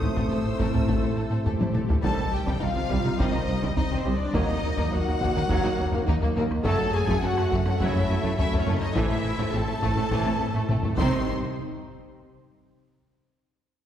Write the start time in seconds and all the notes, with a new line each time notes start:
Already playing: C3 A3 C4 D#4 C5 D#6
0.01 A1 A2 C4 E4, taiko low
0.16 A2 A3 A4, taiko
0.29 A1 A2 E4 A4 C5 E6
0.46 A2
0.59 A1 A2 A3 A4 A#4, taiko
0.73 A2 C4 A4, taiko low
0.87 A1 A2 A3 A4, taiko
1.02 A2 A3 E4 A4
1.16 A1 A2 E4 A4
1.30 A2 A3 A4
1.46 A1 A2 G4 A4, taiko low-mid
1.59 A2 C4 E4, taiko high
1.74 A1 A2 A3 A4, taiko mid
1.89 A2 A3 E4 A4, taiko low
2.02 C2 C3 D#3 G3 C4 A4 C5 D#5 A5, taiko
2.18 C2
2.33 C2 G4 G5
2.46 C2 C3 G3, taiko
2.60 C2 C3 D#3 D#4 F4 F5
2.75 C2 C3 D#3 C4
2.89 C2 C3 G3, taiko
3.04 C3 G3 D#4
3.18 C2 C3 D#3 G3 C4 D#4 C5 D#5, taiko
3.32 C2 C3 D#3 D#4
3.47 C2 C3 C4
3.61 C2 C3 G3, taiko
3.76 C2 C3 C4 D#4 D#5, taiko low
3.91 C2 C3 D#3 C4, taiko low
3.95 C4 C5
4.05 C2 C3 G3
4.15 D4 D5
4.20 C2
4.33 D#2 D#3 F#3 A#3 D#4 F#4 A#4 D#5, taiko
4.50 D#2
4.63 D#2
4.77 D#2 D#3 A#3, taiko
4.91 D#2 F#3 A#3 D#4 F#4 F#5
5.06 D#2 F#3 A#3
5.20 D#2 D#3 A#3, taiko
5.34 D#2 D#3 A#3 D#4
5.49 D#2 D#3 F#3 A#3 F#4, taiko
5.64 D#2 F#3 A#3 D#4
5.78 D#2 A#3 D#4
5.92 D#2 D#3 A#3, taiko
6.07 D#2 A#3 D#4, taiko low
6.21 D#2 F#3 A#3, taiko low
6.35 D#2 D#3 A#3
6.51 D#2, taiko rim
6.64 F#1 F#2 C#3 F#3 A3 F#4 A4 C#5 A5, taiko
6.80 F#2
6.94 F#2 G#4 G#5
7.07 F#2 F#3 A3, taiko
7.22 F#1 F#2 A3 C#4 F#4 F#5
7.37 F#2 A3, taiko rim
7.51 F#1 F#2 F#3 A3, taiko
7.66 F#2 F#3 A3 C#4, taiko rim
7.80 F#1 F#2 C#3 F#3 A3 E4 A4 E5, taiko
7.94 F#2 A3 C#4
8.08 F#1 F#2 A3 F#4
8.23 F#2 F#3 A3, taiko
8.37 F#1 F#2 A3 C#4 E4 F#4 E5, taiko low
8.52 F#2 A3, taiko low
8.57 C#4 C#5
8.67 F#1 F#2 F#3 A3
8.77 D#4 D#5
8.82 F#2, taiko rim
8.95 A1 A2 C3 E3 A3 E4 A4 C5 E5, taiko
9.11 A2
9.25 A2
9.39 A2 A3, taiko
9.53 A1 A2 A3 C4 A4 A5
9.68 A2 A3 C4
9.82 A1 A2 A3, taiko
9.97 A2 A3 C4 E4
10.11 A1 A2 C3 E3 A3 A4, taiko
10.25 A2 A3 C4
10.40 A1 A2 A3 A4
10.55 A2 A3
10.68 A1 A2 A3 C4 A4, taiko mid
10.83 A2 A3 C4, taiko low-mid
10.97 C2 C3 D#3 C4 D#4 G4 C5 C6, taiko